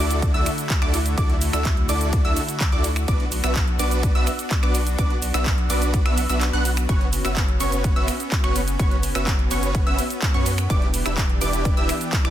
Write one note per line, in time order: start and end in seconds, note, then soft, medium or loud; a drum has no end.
0.00 0.32 D2 loud
0.00 3.04 D3 medium
0.00 3.04 A3 medium
0.00 0.31 D4 medium
0.00 0.31 E4 medium
0.00 3.04 E4 medium
0.00 0.31 F#4 medium
0.00 10.66 F#4 medium
0.00 0.31 A4 medium
0.00 0.31 D5 medium
0.00 0.31 D6 medium
0.11 closed hi-hat soft
0.11 cabasa soft
0.22 kick loud
0.22 closed hi-hat medium
0.22 ride medium
0.22 cabasa soft
0.34 0.48 D2 loud
0.34 0.51 D4 loud
0.34 0.51 E4 medium
0.34 0.51 F#4 medium
0.34 0.51 A4 medium
0.34 0.51 E5 loud
0.34 0.51 E6 loud
0.34 closed hi-hat soft
0.46 finger snap medium
0.46 open hi-hat loud
0.46 ride medium
0.46 cabasa medium
0.58 closed hi-hat soft
0.58 cabasa soft
0.70 kick loud
0.70 clap loud
0.70 closed hi-hat soft
0.70 ride medium
0.70 cabasa soft
0.82 1.15 D2 loud
0.82 0.98 D4 medium
0.82 0.98 E4 medium
0.82 0.98 F#4 medium
0.82 0.98 A4 medium
0.82 0.98 D5 medium
0.82 0.98 D6 medium
0.82 finger snap medium
0.82 closed hi-hat soft
0.94 open hi-hat medium
0.94 ride medium
0.94 cabasa medium
1.06 closed hi-hat medium
1.06 cabasa soft
1.18 1.51 D2 loud
1.18 1.34 D4 medium
1.18 1.34 E4 medium
1.18 1.34 F#4 medium
1.18 1.34 A4 medium
1.18 1.34 D5 medium
1.18 1.34 D6 medium
1.18 kick loud
1.18 closed hi-hat medium
1.18 ride medium
1.18 cabasa soft
1.30 closed hi-hat soft
1.41 open hi-hat loud
1.41 ride medium
1.41 cabasa medium
1.53 1.87 D2 medium
1.53 1.70 D4 medium
1.53 1.70 E4 medium
1.53 1.70 F#4 medium
1.53 1.70 A4 medium
1.53 1.70 E5 medium
1.53 1.70 E6 medium
1.53 finger snap medium
1.53 closed hi-hat medium
1.53 cabasa soft
1.65 kick loud
1.65 clap loud
1.65 closed hi-hat medium
1.65 ride medium
1.65 cabasa soft
1.77 closed hi-hat soft
1.89 2.22 D2 loud
1.89 2.22 D4 medium
1.89 2.22 E4 medium
1.89 2.22 F#4 medium
1.89 2.22 A4 medium
1.89 2.22 D5 medium
1.89 2.22 D6 medium
1.89 open hi-hat medium
1.89 ride medium
1.89 cabasa medium
2.01 closed hi-hat medium
2.01 cabasa soft
2.13 kick loud
2.13 closed hi-hat medium
2.13 ride medium
2.13 cabasa soft
2.25 2.39 D2 loud
2.25 2.41 D4 loud
2.25 2.41 E4 medium
2.25 2.41 F#4 medium
2.25 2.41 A4 medium
2.25 2.41 E5 loud
2.25 2.41 E6 loud
2.25 closed hi-hat soft
2.37 open hi-hat loud
2.37 ride medium
2.37 cabasa medium
2.49 closed hi-hat medium
2.49 cabasa soft
2.60 kick loud
2.60 clap loud
2.60 closed hi-hat medium
2.60 ride medium
2.60 cabasa soft
2.72 3.06 D2 loud
2.72 2.89 D4 medium
2.72 2.89 E4 medium
2.72 2.89 F#4 medium
2.72 2.89 A4 medium
2.72 2.89 D5 medium
2.72 2.89 D6 medium
2.72 closed hi-hat soft
2.84 open hi-hat medium
2.84 ride medium
2.84 cabasa medium
2.96 finger snap medium
2.96 closed hi-hat medium
2.96 cabasa soft
3.08 3.41 B1 loud
3.08 12.30 B3 medium
3.08 3.24 B3 medium
3.08 6.85 D4 medium
3.08 3.24 D4 medium
3.08 3.24 F#4 medium
3.08 3.24 B4 medium
3.08 3.24 D5 medium
3.08 3.24 D6 medium
3.08 kick loud
3.08 closed hi-hat medium
3.08 ride medium
3.08 cabasa soft
3.20 closed hi-hat soft
3.32 open hi-hat loud
3.32 ride medium
3.32 cabasa medium
3.44 3.77 B1 medium
3.44 3.60 B3 medium
3.44 3.60 D4 medium
3.44 3.60 F#4 medium
3.44 3.60 B4 medium
3.44 3.60 E5 medium
3.44 3.60 E6 medium
3.44 finger snap medium
3.44 closed hi-hat medium
3.44 cabasa soft
3.56 kick loud
3.56 clap loud
3.56 closed hi-hat medium
3.56 ride medium
3.56 cabasa soft
3.68 closed hi-hat soft
3.79 4.13 B1 loud
3.79 4.12 B3 medium
3.79 4.12 D4 medium
3.79 4.12 F#4 medium
3.79 4.12 B4 medium
3.79 4.12 D5 medium
3.79 4.12 D6 medium
3.79 open hi-hat medium
3.79 ride medium
3.79 cabasa medium
3.91 closed hi-hat medium
3.91 cabasa soft
4.03 kick loud
4.03 closed hi-hat medium
4.03 ride medium
4.03 cabasa soft
4.15 4.29 B1 loud
4.15 4.32 B3 loud
4.15 4.32 D4 medium
4.15 4.32 F#4 medium
4.15 4.32 B4 medium
4.15 4.32 E5 loud
4.15 4.32 E6 loud
4.15 closed hi-hat soft
4.27 finger snap medium
4.27 open hi-hat loud
4.27 ride medium
4.27 cabasa medium
4.39 closed hi-hat medium
4.39 cabasa soft
4.51 kick loud
4.51 clap loud
4.51 closed hi-hat medium
4.51 ride medium
4.51 cabasa soft
4.63 4.96 B1 loud
4.63 4.79 B3 medium
4.63 4.79 D4 medium
4.63 4.79 F#4 medium
4.63 4.79 B4 medium
4.63 4.79 D5 medium
4.63 4.79 D6 medium
4.63 finger snap medium
4.63 closed hi-hat soft
4.75 open hi-hat medium
4.75 ride medium
4.75 cabasa medium
4.87 closed hi-hat medium
4.87 cabasa soft
4.98 5.32 B1 loud
4.98 5.15 B3 medium
4.98 5.15 D4 medium
4.98 5.15 F#4 medium
4.98 5.15 B4 medium
4.98 5.15 D5 medium
4.98 5.15 D6 medium
4.98 kick loud
4.98 closed hi-hat medium
4.98 ride medium
4.98 cabasa soft
5.10 closed hi-hat soft
5.22 open hi-hat loud
5.22 ride medium
5.22 cabasa medium
5.34 5.68 B1 loud
5.34 5.51 B3 medium
5.34 5.51 D4 medium
5.34 5.51 F#4 medium
5.34 5.51 B4 medium
5.34 5.51 E5 medium
5.34 5.50 E6 medium
5.34 finger snap medium
5.34 closed hi-hat medium
5.34 cabasa soft
5.46 kick loud
5.46 clap loud
5.46 closed hi-hat medium
5.46 ride medium
5.46 cabasa soft
5.58 closed hi-hat soft
5.70 6.03 B1 medium
5.70 6.03 B3 medium
5.70 6.03 D4 medium
5.70 6.03 F#4 medium
5.70 6.03 B4 medium
5.70 6.03 D5 medium
5.70 6.03 D6 medium
5.70 open hi-hat medium
5.70 ride medium
5.70 cabasa medium
5.82 closed hi-hat medium
5.82 cabasa soft
5.94 kick loud
5.94 closed hi-hat medium
5.94 ride medium
5.94 cabasa soft
6.06 6.27 B1 medium
6.06 6.22 B3 loud
6.06 6.22 D4 medium
6.06 6.22 F#4 medium
6.06 6.22 B4 medium
6.06 6.22 E5 loud
6.06 6.22 E6 loud
6.06 finger snap medium
6.06 closed hi-hat soft
6.18 open hi-hat loud
6.18 ride medium
6.18 cabasa medium
6.29 6.51 B1 loud
6.29 6.46 B3 medium
6.29 6.46 D4 medium
6.29 6.46 F#4 medium
6.29 6.46 B4 medium
6.29 6.46 E5 medium
6.29 6.46 E6 medium
6.29 closed hi-hat medium
6.29 cabasa soft
6.41 clap loud
6.41 closed hi-hat medium
6.41 ride medium
6.41 cabasa soft
6.53 6.87 B1 loud
6.53 6.70 B3 medium
6.53 6.70 D4 medium
6.53 6.70 F#4 medium
6.53 6.70 B4 medium
6.53 6.70 F#5 loud
6.53 6.70 F#6 loud
6.53 closed hi-hat soft
6.65 open hi-hat medium
6.65 ride medium
6.65 cabasa medium
6.77 finger snap medium
6.77 closed hi-hat medium
6.77 cabasa soft
6.89 7.22 F#1 loud
6.89 7.05 B3 medium
6.89 10.66 C#4 medium
6.89 7.05 C#4 medium
6.89 7.05 F#4 medium
6.89 7.05 B4 medium
6.89 7.05 C#5 medium
6.89 7.05 C#6 medium
6.89 kick loud
6.89 closed hi-hat medium
6.89 ride medium
6.89 cabasa soft
7.01 closed hi-hat soft
7.13 open hi-hat loud
7.13 ride medium
7.13 cabasa medium
7.25 7.58 F#1 loud
7.25 7.41 B3 medium
7.25 7.41 C#4 medium
7.25 7.41 F#4 medium
7.25 7.41 B4 medium
7.25 7.41 E5 medium
7.25 7.41 E6 medium
7.25 finger snap medium
7.25 closed hi-hat medium
7.25 cabasa soft
7.37 kick loud
7.37 clap loud
7.37 closed hi-hat medium
7.37 ride medium
7.37 cabasa soft
7.48 closed hi-hat soft
7.60 7.94 F#1 loud
7.60 7.93 B3 medium
7.60 7.93 C#4 medium
7.60 7.93 F#4 medium
7.60 7.93 B4 medium
7.60 7.93 C#5 medium
7.60 7.93 C#6 medium
7.60 open hi-hat medium
7.60 ride medium
7.60 cabasa medium
7.72 closed hi-hat medium
7.72 cabasa soft
7.84 kick loud
7.84 closed hi-hat medium
7.84 ride medium
7.84 cabasa soft
7.96 8.10 F#1 medium
7.96 8.13 B3 loud
7.96 8.13 C#4 medium
7.96 8.13 F#4 medium
7.96 8.13 B4 medium
7.96 8.13 E5 loud
7.96 8.12 E6 loud
7.96 closed hi-hat soft
8.08 finger snap medium
8.08 open hi-hat loud
8.08 ride medium
8.08 cabasa medium
8.20 closed hi-hat medium
8.20 cabasa soft
8.32 kick loud
8.32 clap loud
8.32 closed hi-hat medium
8.32 ride medium
8.32 cabasa soft
8.44 8.77 F#1 loud
8.44 8.60 B3 medium
8.44 8.60 C#4 medium
8.44 8.60 F#4 medium
8.44 8.60 B4 medium
8.44 8.60 C#5 medium
8.44 8.60 C#6 medium
8.44 finger snap medium
8.44 closed hi-hat soft
8.56 open hi-hat medium
8.56 ride medium
8.56 cabasa medium
8.68 closed hi-hat medium
8.68 cabasa soft
8.79 9.13 F#1 loud
8.79 8.96 B3 medium
8.79 8.96 C#4 medium
8.79 8.96 F#4 medium
8.79 8.96 B4 medium
8.79 8.96 C#5 medium
8.79 8.96 C#6 medium
8.79 kick loud
8.79 closed hi-hat medium
8.79 ride medium
8.79 cabasa soft
8.91 closed hi-hat soft
9.03 open hi-hat loud
9.03 ride medium
9.03 cabasa medium
9.15 9.49 F#1 loud
9.15 9.32 B3 medium
9.15 9.32 C#4 medium
9.15 9.32 F#4 medium
9.15 9.32 B4 medium
9.15 9.32 E5 medium
9.15 9.31 E6 medium
9.15 finger snap medium
9.15 closed hi-hat medium
9.15 cabasa soft
9.27 kick loud
9.27 clap loud
9.27 closed hi-hat medium
9.27 ride medium
9.27 cabasa soft
9.39 closed hi-hat soft
9.51 9.84 F#1 loud
9.51 9.84 B3 medium
9.51 9.84 C#4 medium
9.51 9.84 F#4 medium
9.51 9.84 B4 medium
9.51 9.84 C#5 medium
9.51 9.84 C#6 medium
9.51 open hi-hat medium
9.51 ride medium
9.51 cabasa medium
9.63 closed hi-hat medium
9.63 cabasa soft
9.75 kick loud
9.75 closed hi-hat medium
9.75 ride medium
9.75 cabasa soft
9.87 10.01 F#1 loud
9.87 10.03 B3 loud
9.87 10.03 C#4 medium
9.87 10.03 F#4 medium
9.87 10.03 B4 medium
9.87 10.03 E5 loud
9.87 10.03 E6 loud
9.87 closed hi-hat soft
9.99 open hi-hat loud
9.99 ride medium
9.99 cabasa medium
10.10 closed hi-hat medium
10.10 cabasa soft
10.22 kick loud
10.22 clap loud
10.22 closed hi-hat medium
10.22 ride medium
10.22 cabasa soft
10.34 10.68 F#2 loud
10.34 10.51 B3 medium
10.34 10.51 C#4 medium
10.34 10.51 F#4 medium
10.34 10.51 B4 medium
10.34 10.51 C#5 medium
10.34 10.51 C#6 medium
10.34 closed hi-hat soft
10.46 open hi-hat loud
10.46 ride medium
10.46 cabasa medium
10.58 finger snap medium
10.58 closed hi-hat medium
10.58 cabasa soft
10.70 11.03 E1 loud
10.70 12.30 E3 medium
10.70 10.86 D4 medium
10.70 12.30 D4 medium
10.70 10.86 E4 medium
10.70 12.30 G4 loud
10.70 10.86 G4 medium
10.70 10.86 B4 medium
10.70 10.86 D5 medium
10.70 10.86 D6 medium
10.70 kick loud
10.70 closed hi-hat medium
10.70 ride medium
10.70 cabasa soft
10.82 closed hi-hat soft
10.94 open hi-hat loud
10.94 ride medium
10.94 cabasa medium
11.06 11.39 E1 loud
11.06 11.22 D4 medium
11.06 11.22 E4 medium
11.06 11.22 G4 medium
11.06 11.22 B4 medium
11.06 11.22 E5 medium
11.06 11.22 E6 medium
11.06 finger snap medium
11.06 closed hi-hat medium
11.06 cabasa soft
11.17 kick loud
11.17 clap loud
11.17 closed hi-hat medium
11.17 ride medium
11.17 cabasa soft
11.30 closed hi-hat soft
11.41 11.75 E1 loud
11.41 11.74 D4 medium
11.41 11.74 E4 medium
11.41 11.74 G4 medium
11.41 11.74 B4 medium
11.41 11.74 D5 medium
11.41 11.74 D6 medium
11.41 open hi-hat loud
11.41 ride medium
11.41 cabasa medium
11.53 closed hi-hat medium
11.53 cabasa soft
11.65 kick loud
11.65 closed hi-hat medium
11.65 ride medium
11.65 cabasa soft
11.77 11.91 E1 loud
11.77 11.93 D4 loud
11.77 11.93 E4 medium
11.77 11.93 G4 medium
11.77 11.93 B4 medium
11.77 11.93 E5 loud
11.77 11.93 E6 loud
11.77 closed hi-hat soft
11.89 finger snap medium
11.89 open hi-hat loud
11.89 ride medium
11.89 cabasa medium
12.01 closed hi-hat medium
12.01 cabasa soft
12.13 kick loud
12.13 clap loud
12.13 closed hi-hat medium
12.13 ride medium
12.13 cabasa soft
12.25 12.30 E1 loud
12.25 12.30 D4 medium
12.25 12.30 E4 medium
12.25 12.30 G4 medium
12.25 12.30 B4 medium
12.25 12.30 D5 medium
12.25 12.30 D6 medium
12.25 finger snap medium
12.25 closed hi-hat soft